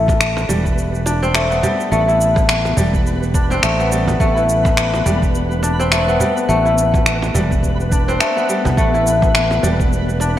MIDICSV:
0, 0, Header, 1, 6, 480
1, 0, Start_track
1, 0, Key_signature, 0, "minor"
1, 0, Tempo, 571429
1, 1610, Time_signature, 4, 2, 24, 8
1, 8728, End_track
2, 0, Start_track
2, 0, Title_t, "Synth texture"
2, 0, Program_c, 0, 99
2, 0, Note_on_c, 0, 59, 85
2, 0, Note_on_c, 0, 71, 88
2, 8728, Note_off_c, 0, 59, 0
2, 8728, Note_off_c, 0, 71, 0
2, 8728, End_track
3, 0, Start_track
3, 0, Title_t, "Kora"
3, 0, Program_c, 1, 46
3, 0, Note_on_c, 1, 57, 93
3, 0, Note_on_c, 1, 64, 65
3, 409, Note_on_c, 1, 55, 70
3, 889, Note_on_c, 1, 62, 74
3, 1029, Note_on_c, 1, 60, 91
3, 1125, Note_off_c, 1, 57, 0
3, 1129, Note_on_c, 1, 57, 75
3, 1145, Note_off_c, 1, 64, 0
3, 1265, Note_on_c, 1, 59, 84
3, 1315, Note_off_c, 1, 60, 0
3, 1358, Note_off_c, 1, 55, 0
3, 1368, Note_on_c, 1, 55, 71
3, 1606, Note_off_c, 1, 57, 0
3, 1609, Note_on_c, 1, 57, 93
3, 1748, Note_on_c, 1, 64, 71
3, 2300, Note_off_c, 1, 62, 0
3, 2319, Note_off_c, 1, 55, 0
3, 2329, Note_on_c, 1, 55, 70
3, 2811, Note_on_c, 1, 62, 74
3, 2830, Note_off_c, 1, 59, 0
3, 2949, Note_on_c, 1, 60, 99
3, 3046, Note_off_c, 1, 57, 0
3, 3049, Note_on_c, 1, 57, 72
3, 3064, Note_off_c, 1, 64, 0
3, 3189, Note_on_c, 1, 59, 89
3, 3240, Note_off_c, 1, 60, 0
3, 3280, Note_off_c, 1, 55, 0
3, 3290, Note_on_c, 1, 55, 72
3, 3525, Note_off_c, 1, 57, 0
3, 3529, Note_on_c, 1, 57, 102
3, 3668, Note_on_c, 1, 64, 71
3, 4222, Note_off_c, 1, 62, 0
3, 4240, Note_off_c, 1, 55, 0
3, 4250, Note_on_c, 1, 55, 76
3, 4728, Note_on_c, 1, 62, 70
3, 4755, Note_off_c, 1, 59, 0
3, 4868, Note_on_c, 1, 60, 101
3, 4966, Note_off_c, 1, 57, 0
3, 4969, Note_on_c, 1, 57, 75
3, 4984, Note_off_c, 1, 64, 0
3, 5108, Note_on_c, 1, 59, 89
3, 5158, Note_off_c, 1, 60, 0
3, 5200, Note_off_c, 1, 55, 0
3, 5210, Note_on_c, 1, 55, 69
3, 5445, Note_off_c, 1, 57, 0
3, 5448, Note_on_c, 1, 57, 98
3, 5590, Note_on_c, 1, 64, 71
3, 6139, Note_off_c, 1, 62, 0
3, 6159, Note_off_c, 1, 55, 0
3, 6169, Note_on_c, 1, 55, 74
3, 6652, Note_on_c, 1, 62, 71
3, 6673, Note_off_c, 1, 59, 0
3, 6789, Note_on_c, 1, 60, 98
3, 6886, Note_off_c, 1, 57, 0
3, 6890, Note_on_c, 1, 57, 73
3, 6906, Note_off_c, 1, 64, 0
3, 7027, Note_on_c, 1, 59, 84
3, 7078, Note_off_c, 1, 60, 0
3, 7122, Note_off_c, 1, 55, 0
3, 7132, Note_on_c, 1, 55, 69
3, 7366, Note_off_c, 1, 57, 0
3, 7370, Note_on_c, 1, 57, 94
3, 7412, Note_off_c, 1, 55, 0
3, 7510, Note_on_c, 1, 64, 73
3, 8063, Note_off_c, 1, 62, 0
3, 8093, Note_on_c, 1, 55, 71
3, 8572, Note_on_c, 1, 62, 74
3, 8593, Note_off_c, 1, 59, 0
3, 8728, Note_off_c, 1, 55, 0
3, 8728, Note_off_c, 1, 57, 0
3, 8728, Note_off_c, 1, 62, 0
3, 8728, Note_off_c, 1, 64, 0
3, 8728, End_track
4, 0, Start_track
4, 0, Title_t, "Fretless electric bass"
4, 0, Program_c, 2, 35
4, 0, Note_on_c, 2, 33, 79
4, 383, Note_off_c, 2, 33, 0
4, 410, Note_on_c, 2, 28, 76
4, 1344, Note_off_c, 2, 28, 0
4, 1609, Note_on_c, 2, 33, 87
4, 2303, Note_off_c, 2, 33, 0
4, 2329, Note_on_c, 2, 28, 78
4, 3023, Note_off_c, 2, 28, 0
4, 3051, Note_on_c, 2, 33, 88
4, 3504, Note_off_c, 2, 33, 0
4, 3528, Note_on_c, 2, 33, 90
4, 4223, Note_off_c, 2, 33, 0
4, 4250, Note_on_c, 2, 28, 79
4, 5184, Note_off_c, 2, 28, 0
4, 5449, Note_on_c, 2, 33, 89
4, 6143, Note_off_c, 2, 33, 0
4, 6170, Note_on_c, 2, 28, 79
4, 6863, Note_off_c, 2, 28, 0
4, 7268, Note_on_c, 2, 36, 85
4, 7353, Note_off_c, 2, 36, 0
4, 7371, Note_on_c, 2, 33, 88
4, 8064, Note_off_c, 2, 33, 0
4, 8090, Note_on_c, 2, 28, 81
4, 8728, Note_off_c, 2, 28, 0
4, 8728, End_track
5, 0, Start_track
5, 0, Title_t, "Cajon"
5, 75, Note_on_c, 9, 38, 75
5, 159, Note_off_c, 9, 38, 0
5, 308, Note_on_c, 9, 38, 77
5, 392, Note_off_c, 9, 38, 0
5, 411, Note_on_c, 9, 36, 78
5, 495, Note_off_c, 9, 36, 0
5, 889, Note_on_c, 9, 38, 62
5, 973, Note_off_c, 9, 38, 0
5, 1372, Note_on_c, 9, 36, 83
5, 1456, Note_off_c, 9, 36, 0
5, 1983, Note_on_c, 9, 38, 77
5, 2067, Note_off_c, 9, 38, 0
5, 2227, Note_on_c, 9, 38, 75
5, 2311, Note_off_c, 9, 38, 0
5, 2326, Note_on_c, 9, 36, 84
5, 2410, Note_off_c, 9, 36, 0
5, 2943, Note_on_c, 9, 38, 51
5, 3027, Note_off_c, 9, 38, 0
5, 3423, Note_on_c, 9, 36, 86
5, 3428, Note_on_c, 9, 38, 61
5, 3507, Note_off_c, 9, 36, 0
5, 3512, Note_off_c, 9, 38, 0
5, 3906, Note_on_c, 9, 38, 86
5, 3990, Note_off_c, 9, 38, 0
5, 4146, Note_on_c, 9, 38, 79
5, 4230, Note_off_c, 9, 38, 0
5, 4249, Note_on_c, 9, 36, 81
5, 4333, Note_off_c, 9, 36, 0
5, 4726, Note_on_c, 9, 38, 61
5, 4810, Note_off_c, 9, 38, 0
5, 5209, Note_on_c, 9, 36, 76
5, 5293, Note_off_c, 9, 36, 0
5, 5831, Note_on_c, 9, 38, 73
5, 5915, Note_off_c, 9, 38, 0
5, 6068, Note_on_c, 9, 38, 74
5, 6152, Note_off_c, 9, 38, 0
5, 6175, Note_on_c, 9, 36, 82
5, 6259, Note_off_c, 9, 36, 0
5, 6792, Note_on_c, 9, 38, 57
5, 6876, Note_off_c, 9, 38, 0
5, 7267, Note_on_c, 9, 38, 63
5, 7268, Note_on_c, 9, 36, 85
5, 7351, Note_off_c, 9, 38, 0
5, 7352, Note_off_c, 9, 36, 0
5, 7746, Note_on_c, 9, 38, 73
5, 7830, Note_off_c, 9, 38, 0
5, 7985, Note_on_c, 9, 38, 65
5, 8069, Note_off_c, 9, 38, 0
5, 8090, Note_on_c, 9, 36, 86
5, 8174, Note_off_c, 9, 36, 0
5, 8567, Note_on_c, 9, 38, 49
5, 8651, Note_off_c, 9, 38, 0
5, 8728, End_track
6, 0, Start_track
6, 0, Title_t, "Drums"
6, 68, Note_on_c, 9, 36, 93
6, 77, Note_on_c, 9, 82, 30
6, 152, Note_off_c, 9, 36, 0
6, 161, Note_off_c, 9, 82, 0
6, 173, Note_on_c, 9, 26, 101
6, 177, Note_on_c, 9, 82, 43
6, 257, Note_off_c, 9, 26, 0
6, 261, Note_off_c, 9, 82, 0
6, 316, Note_on_c, 9, 82, 21
6, 400, Note_off_c, 9, 82, 0
6, 418, Note_on_c, 9, 82, 75
6, 502, Note_off_c, 9, 82, 0
6, 549, Note_on_c, 9, 36, 88
6, 555, Note_on_c, 9, 82, 31
6, 633, Note_off_c, 9, 36, 0
6, 639, Note_off_c, 9, 82, 0
6, 657, Note_on_c, 9, 82, 40
6, 741, Note_off_c, 9, 82, 0
6, 794, Note_on_c, 9, 82, 22
6, 878, Note_off_c, 9, 82, 0
6, 896, Note_on_c, 9, 82, 76
6, 980, Note_off_c, 9, 82, 0
6, 1034, Note_on_c, 9, 82, 33
6, 1118, Note_off_c, 9, 82, 0
6, 1130, Note_on_c, 9, 26, 95
6, 1134, Note_on_c, 9, 82, 40
6, 1214, Note_off_c, 9, 26, 0
6, 1218, Note_off_c, 9, 82, 0
6, 1273, Note_on_c, 9, 82, 20
6, 1357, Note_off_c, 9, 82, 0
6, 1375, Note_on_c, 9, 82, 70
6, 1459, Note_off_c, 9, 82, 0
6, 1514, Note_on_c, 9, 82, 32
6, 1598, Note_off_c, 9, 82, 0
6, 1615, Note_on_c, 9, 82, 43
6, 1699, Note_off_c, 9, 82, 0
6, 1755, Note_on_c, 9, 82, 21
6, 1839, Note_off_c, 9, 82, 0
6, 1855, Note_on_c, 9, 82, 76
6, 1939, Note_off_c, 9, 82, 0
6, 1987, Note_on_c, 9, 36, 100
6, 1994, Note_on_c, 9, 82, 32
6, 2071, Note_off_c, 9, 36, 0
6, 2078, Note_off_c, 9, 82, 0
6, 2090, Note_on_c, 9, 26, 101
6, 2095, Note_on_c, 9, 82, 45
6, 2174, Note_off_c, 9, 26, 0
6, 2179, Note_off_c, 9, 82, 0
6, 2232, Note_on_c, 9, 82, 22
6, 2316, Note_off_c, 9, 82, 0
6, 2332, Note_on_c, 9, 82, 73
6, 2416, Note_off_c, 9, 82, 0
6, 2467, Note_on_c, 9, 36, 102
6, 2472, Note_on_c, 9, 82, 34
6, 2551, Note_off_c, 9, 36, 0
6, 2556, Note_off_c, 9, 82, 0
6, 2575, Note_on_c, 9, 82, 42
6, 2659, Note_off_c, 9, 82, 0
6, 2713, Note_on_c, 9, 82, 21
6, 2797, Note_off_c, 9, 82, 0
6, 2808, Note_on_c, 9, 36, 99
6, 2812, Note_on_c, 9, 82, 73
6, 2892, Note_off_c, 9, 36, 0
6, 2896, Note_off_c, 9, 82, 0
6, 2952, Note_on_c, 9, 82, 33
6, 3036, Note_off_c, 9, 82, 0
6, 3048, Note_on_c, 9, 26, 100
6, 3053, Note_on_c, 9, 82, 41
6, 3132, Note_off_c, 9, 26, 0
6, 3137, Note_off_c, 9, 82, 0
6, 3191, Note_on_c, 9, 82, 22
6, 3275, Note_off_c, 9, 82, 0
6, 3292, Note_on_c, 9, 82, 78
6, 3376, Note_off_c, 9, 82, 0
6, 3431, Note_on_c, 9, 82, 30
6, 3515, Note_off_c, 9, 82, 0
6, 3528, Note_on_c, 9, 36, 114
6, 3533, Note_on_c, 9, 82, 45
6, 3612, Note_off_c, 9, 36, 0
6, 3617, Note_off_c, 9, 82, 0
6, 3673, Note_on_c, 9, 82, 21
6, 3757, Note_off_c, 9, 82, 0
6, 3774, Note_on_c, 9, 82, 82
6, 3858, Note_off_c, 9, 82, 0
6, 3907, Note_on_c, 9, 36, 106
6, 3912, Note_on_c, 9, 82, 35
6, 3991, Note_off_c, 9, 36, 0
6, 3996, Note_off_c, 9, 82, 0
6, 4009, Note_on_c, 9, 26, 92
6, 4013, Note_on_c, 9, 82, 45
6, 4093, Note_off_c, 9, 26, 0
6, 4097, Note_off_c, 9, 82, 0
6, 4154, Note_on_c, 9, 82, 23
6, 4238, Note_off_c, 9, 82, 0
6, 4254, Note_on_c, 9, 82, 74
6, 4338, Note_off_c, 9, 82, 0
6, 4386, Note_on_c, 9, 36, 95
6, 4392, Note_on_c, 9, 82, 34
6, 4470, Note_off_c, 9, 36, 0
6, 4476, Note_off_c, 9, 82, 0
6, 4494, Note_on_c, 9, 82, 45
6, 4578, Note_off_c, 9, 82, 0
6, 4633, Note_on_c, 9, 82, 23
6, 4717, Note_off_c, 9, 82, 0
6, 4734, Note_on_c, 9, 82, 77
6, 4818, Note_off_c, 9, 82, 0
6, 4874, Note_on_c, 9, 82, 34
6, 4958, Note_off_c, 9, 82, 0
6, 4970, Note_on_c, 9, 26, 98
6, 4975, Note_on_c, 9, 82, 42
6, 5054, Note_off_c, 9, 26, 0
6, 5059, Note_off_c, 9, 82, 0
6, 5115, Note_on_c, 9, 82, 23
6, 5199, Note_off_c, 9, 82, 0
6, 5214, Note_on_c, 9, 82, 73
6, 5298, Note_off_c, 9, 82, 0
6, 5353, Note_on_c, 9, 82, 33
6, 5437, Note_off_c, 9, 82, 0
6, 5456, Note_on_c, 9, 82, 43
6, 5540, Note_off_c, 9, 82, 0
6, 5594, Note_on_c, 9, 82, 22
6, 5678, Note_off_c, 9, 82, 0
6, 5695, Note_on_c, 9, 82, 75
6, 5779, Note_off_c, 9, 82, 0
6, 5828, Note_on_c, 9, 36, 109
6, 5834, Note_on_c, 9, 82, 34
6, 5912, Note_off_c, 9, 36, 0
6, 5918, Note_off_c, 9, 82, 0
6, 5931, Note_on_c, 9, 26, 94
6, 5936, Note_on_c, 9, 82, 44
6, 6015, Note_off_c, 9, 26, 0
6, 6020, Note_off_c, 9, 82, 0
6, 6076, Note_on_c, 9, 82, 22
6, 6160, Note_off_c, 9, 82, 0
6, 6176, Note_on_c, 9, 82, 74
6, 6260, Note_off_c, 9, 82, 0
6, 6308, Note_on_c, 9, 36, 94
6, 6316, Note_on_c, 9, 82, 34
6, 6392, Note_off_c, 9, 36, 0
6, 6400, Note_off_c, 9, 82, 0
6, 6409, Note_on_c, 9, 36, 58
6, 6416, Note_on_c, 9, 82, 43
6, 6493, Note_off_c, 9, 36, 0
6, 6500, Note_off_c, 9, 82, 0
6, 6554, Note_on_c, 9, 82, 21
6, 6638, Note_off_c, 9, 82, 0
6, 6650, Note_on_c, 9, 36, 100
6, 6654, Note_on_c, 9, 82, 78
6, 6734, Note_off_c, 9, 36, 0
6, 6738, Note_off_c, 9, 82, 0
6, 6795, Note_on_c, 9, 82, 34
6, 6879, Note_off_c, 9, 82, 0
6, 6892, Note_on_c, 9, 26, 90
6, 6897, Note_on_c, 9, 82, 41
6, 6976, Note_off_c, 9, 26, 0
6, 6981, Note_off_c, 9, 82, 0
6, 7037, Note_on_c, 9, 82, 24
6, 7121, Note_off_c, 9, 82, 0
6, 7136, Note_on_c, 9, 82, 76
6, 7220, Note_off_c, 9, 82, 0
6, 7276, Note_on_c, 9, 82, 31
6, 7360, Note_off_c, 9, 82, 0
6, 7370, Note_on_c, 9, 36, 103
6, 7375, Note_on_c, 9, 82, 43
6, 7454, Note_off_c, 9, 36, 0
6, 7459, Note_off_c, 9, 82, 0
6, 7515, Note_on_c, 9, 82, 21
6, 7599, Note_off_c, 9, 82, 0
6, 7617, Note_on_c, 9, 82, 79
6, 7701, Note_off_c, 9, 82, 0
6, 7749, Note_on_c, 9, 36, 100
6, 7754, Note_on_c, 9, 82, 31
6, 7833, Note_off_c, 9, 36, 0
6, 7838, Note_off_c, 9, 82, 0
6, 7852, Note_on_c, 9, 26, 94
6, 7856, Note_on_c, 9, 82, 40
6, 7936, Note_off_c, 9, 26, 0
6, 7940, Note_off_c, 9, 82, 0
6, 7996, Note_on_c, 9, 82, 20
6, 8080, Note_off_c, 9, 82, 0
6, 8097, Note_on_c, 9, 82, 73
6, 8181, Note_off_c, 9, 82, 0
6, 8230, Note_on_c, 9, 36, 103
6, 8236, Note_on_c, 9, 82, 32
6, 8314, Note_off_c, 9, 36, 0
6, 8320, Note_off_c, 9, 82, 0
6, 8339, Note_on_c, 9, 82, 40
6, 8423, Note_off_c, 9, 82, 0
6, 8478, Note_on_c, 9, 82, 22
6, 8562, Note_off_c, 9, 82, 0
6, 8578, Note_on_c, 9, 82, 76
6, 8662, Note_off_c, 9, 82, 0
6, 8728, End_track
0, 0, End_of_file